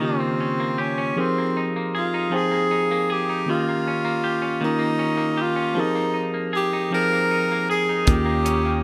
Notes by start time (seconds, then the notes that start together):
Already playing: A#3 C#4 G4
0.00 C#3 D#3 A#3 F4 G4
0.05 C4
0.20 A#3
0.40 C#4
0.60 A#3
0.78 C#4 G4
0.98 C#4
1.15 F3 C4 D#4 G4 G#4 A#4
1.20 C4
1.38 A#3
1.57 D#4
1.76 A#3
1.95 F4 G#4
2.14 D#4
2.30 F3 C4 D#4 G#4 C5 G5
2.36 G#4
2.51 A#3
2.71 D#4
2.91 A#3
3.10 G4 G#4
3.29 D#4
3.46 D#3 A#3 C#4 F4 G4
3.51 F4
3.69 A#3
3.88 C#4
4.05 A#3
4.24 G4
4.42 C#4
4.61 D#3 A#3 C#4 F4 A#4
4.65 D#4
4.79 A#3
4.99 C#4
5.17 A#3
5.37 G4
5.42 F4
5.56 C#4
5.74 F3 C4 D#4 G4 G#4 A#4
5.81 D#4
5.95 A#3
6.14 D#4
6.34 A#3
6.53 G4 G#4
6.73 D#4
6.91 F3 C4 D#4 G#4 A#4 C5 G5
7.12 A#3
7.31 D#4
7.52 A#3
7.70 G#4
7.89 D#4
8.05 D#2 D#3 A#3 C#4 F4 C#5 G5 A#5 D#6, kick, closed hi-hat
8.10 G4
8.25 A#3
8.45 C#4, closed hi-hat
8.65 A#3